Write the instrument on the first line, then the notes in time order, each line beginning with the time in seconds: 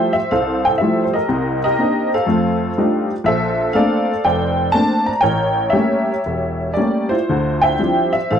honky-tonk piano
Already playing: F3 G3 A3 E4 A4 C5 E5 G5
0.13 E5
0.31 C2 A4 C5 F5
0.65 G5
0.78 F3 G3 A3 E5
0.82 E4
1.04 C5
1.13 G4 A#4 D#5
1.29 C2 C3
1.64 G4 A#4 D#5
1.78 A#3 C4 D4 D#4
2.14 A4 C5 F5
2.27 F2 A3
2.78 G3 A3 D4 D#4 F4
3.24 A#1 A4 C5 E5
3.73 A3 A#3 C4 D4 A4 D5 F5
4.25 F1 C5 D5 G5
4.72 A3 A#3 C4 D4 A5
5.06 A#5
5.21 A1 A#4 C#5 G5
5.70 G3 A3 A#3 G4 C#5 E5
5.75 C#4
6.26 E1
6.74 G3 A3 A#3 C#4 D5
7.09 E4 F4 C5
7.29 D2 D3
7.62 C5 E5 G5
7.79 F3 G3 C4 D4 E4
8.13 E5
8.30 A1 A4 C5 F5